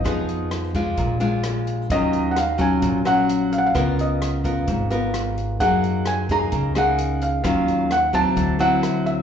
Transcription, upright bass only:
X:1
M:4/4
L:1/8
Q:1/4=130
K:Ebdor
V:1 name="Upright bass" clef=bass
F,,4 B,,,4 | E,,4 B,,,4 | D,,4 A,,,4 | G,,4 D,,4 |
E,,4 =D,,4 |]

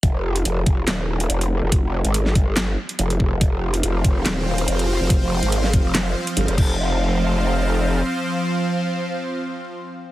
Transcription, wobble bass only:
X:1
M:4/4
L:1/16
Q:"Swing 16ths" 1/4=142
K:Cphr
V:1 name="Wobble bass" clef=bass
F,,,4 F,,,4 E,,,4 F,,,3 F,,,- | F,,,3 A,,,3 G,,,4 z2 F,,,4 | F,,,4 F,,,4 E,,,4 F,,,3 F,,,- | F,,,3 A,,,3 F,,,4 z2 G,,, F,,, F,,,2- |
F,,,12 z4 | z16 |]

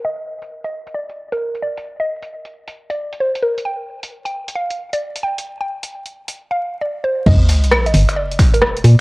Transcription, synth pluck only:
X:1
M:4/4
L:1/16
Q:"Swing 16ths" 1/4=133
K:Cm
V:1 name="Synth pluck"
e z4 e2 z d2 z B2 z d2 | z e z6 z d2 z c z B z | g z4 g2 z f2 z d2 z g2 | z g z6 z f2 z d z c z |
e z4 e2 z d2 z B2 z d2 |]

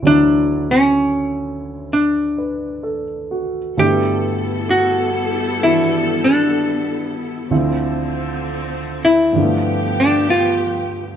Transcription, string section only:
X:1
M:4/4
L:1/8
Q:"Swing" 1/4=64
K:D
V:1 name="String section"
z8 | [K:G] [G,B,EA]8 | [D,C]4 [=F,B,G]4 |]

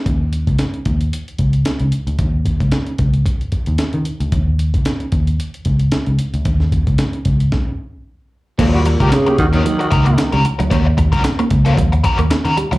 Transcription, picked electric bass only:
X:1
M:4/4
L:1/16
Q:"Swing 16ths" 1/4=113
K:Dblyd
V:1 name="Picked electric bass" clef=bass
E,,3 D,, z2 E,,2 z2 D,,2 z D,, z =D,, | E,,3 D,, z2 D,,2 z3 E,, z E, z =D,, | E,,3 D,, z2 E,,2 z2 D,,2 z D,, z =D,, | E,,3 D,, z2 D,,2 z8 |
E,,3 D,, z2 E,,2 z2 D,,2 z D,, z =D,, | E,,3 D,, z2 D,,2 E,,2 z E,, z E, z =D,, |]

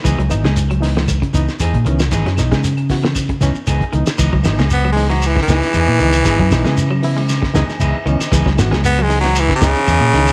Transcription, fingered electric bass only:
X:1
M:4/4
L:1/16
Q:"Swing 16ths" 1/4=116
K:C#m
V:1 name="Fingered electric bass" clef=bass
C,, C,, G,,, C,,6- C,, C,, z E,, ^A,, C,,2 | G,,, F,, B,,, C,6- C, C,, z C,, z C,, z | C,, C,, G,,, C,,6- C,, C,, z E,, ^A,, C,,2 | G,,, F,, B,,, C,6- C, C,, z C,, z C,, z |
C,, C,, G,,, C,,6- C,, C,, z E,, ^A,, C,,2 |]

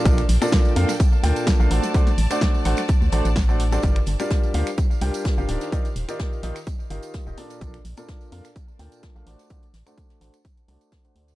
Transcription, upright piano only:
X:1
M:4/4
L:1/16
Q:"Swing 16ths" 1/4=127
K:Dphr
V:1 name="Upright piano"
[B,,DFABd] z2 [B,,DFABd]3 [B,,DFABf] z3 [B,,DFABg]3 [A,DFABf] [A,D^FAcd]2 | [A,D^FAcd] z2 [A,DFAcd]3 [A,DFAc^f] z3 [A,DFAcd] z2 [A,DFAcd] z [G,DFAcd] | z3 [G,DFGBd]3 [G,DFGBf] z3 [G,DFGBg]3 [G,DFGBf] [E,DFGBd]2 | [E,EFGBd] z2 [E,EFGBd]3 [E,EFGBe] z3 [E,EFGBf]3 [EFGBe] [B,,DFABd]2 |
[B,,DFABd] z2 [B,,DFABd]3 [B,,DFABf] z3 [B,,DFABg]3 [A,DFABf] [A,D^FAcd]2 | [A,D^FAcd] z2 [A,DFAcd]3 [A,DFAc^f] z3 [A,DFAcd]3 [A,DFAcf] [A,DFAcd]2 |]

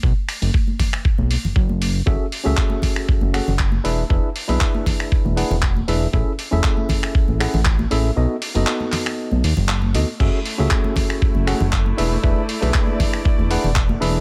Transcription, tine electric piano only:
X:1
M:4/4
L:1/16
Q:1/4=118
K:Emix
V:1 name="Tine electric piano"
z16 | [CFGAe] z2 [CFGAe]6- [CFGAe] [CFGAf] z3 [DEGBe] z | [DEGBe] z2 [DEGBe]6- [DEGBe] [DEGBf] z3 [DEGBe] z | [CEGAe] z2 [CEGAe]6- [CEGAe] [CEGAf] z3 [CEGAe] z |
[B,^DFA^d] z2 [B,DFAd]6- [B,DFAd] z4 [B,DFAd] z | [CFGAe] z2 [CFGAe]6- [CFGAe] [CFGAf] z3 [DEGBe] z | [DEGBe] z2 [DEGBe]6- [DEGBe] [DEGBf] z3 [DEGBe] z |]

